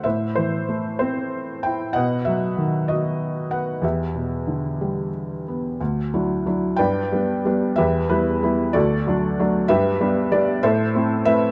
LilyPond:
<<
  \new Staff \with { instrumentName = "Felt piano" } { \time 6/8 \key e \minor \tempo 4. = 63 << { e''8 c''4 c''4 g''8 | fis''8 e''4 dis''4 fis''8 | e''2 r4 | r4. g''4 r8 |
e''8 b'4 d''4 r8 | e''4 d''8 e''4 e''8 | } \\ { c''4. r4. | dis''4. r4. | g'2 r4 | r4. <b' d''>4. |
<g' b'>8 <e' g'>4 <fis' a'>4. | <g' b'>4. <a' c''>4 b'8 | } >> }
  \new Staff \with { instrumentName = "Felt piano" } { \time 6/8 \key e \minor a,8 e8 a8 c'4 e'8 | b,8 fis8 dis8 fis'4 b'8 | e,8 b,8 d8 g4 b8 | d,8 <fis d' e'>8 <fis d' e'>8 g,8 <g b d'>8 <g b d'>8 |
e,8 <g b>8 <g b e'>8 d,8 <fis a d'>8 <fis a d'>8 | g,8 <g b d'>8 <g b d'>8 a,8 <a c' e'>8 <a c' e'>8 | }
>>